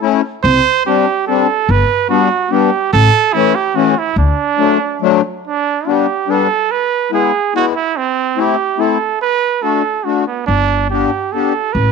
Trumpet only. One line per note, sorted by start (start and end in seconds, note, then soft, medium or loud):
0.43 0.82 C5 loud
0.86 1.25 G4 loud
1.27 1.72 A4 loud
1.71 2.09 B4 loud
2.09 2.53 F#4 loud
2.52 2.92 G4 medium
2.93 3.35 A4 loud
3.33 3.57 E4 loud
3.55 3.77 G4 medium
3.75 4.00 F#4 medium
3.98 4.18 E4 loud
4.19 5.20 D4 loud
5.46 5.91 D4 loud
5.89 6.32 G4 medium
6.30 6.73 A4 loud
6.71 7.13 B4 loud
7.14 7.52 G#4 loud
7.57 7.66 F#4 loud
7.76 7.98 E4 loud
7.97 8.42 C4 loud
8.40 8.82 G4 medium
8.81 9.21 A4 medium
9.22 9.64 B4 loud
9.62 10.06 A4 medium
10.05 10.26 F#4 medium
10.27 10.46 B3 medium
10.46 10.86 D4 loud
10.90 11.33 G4 medium
11.32 11.74 A4 medium
11.73 11.92 B4 loud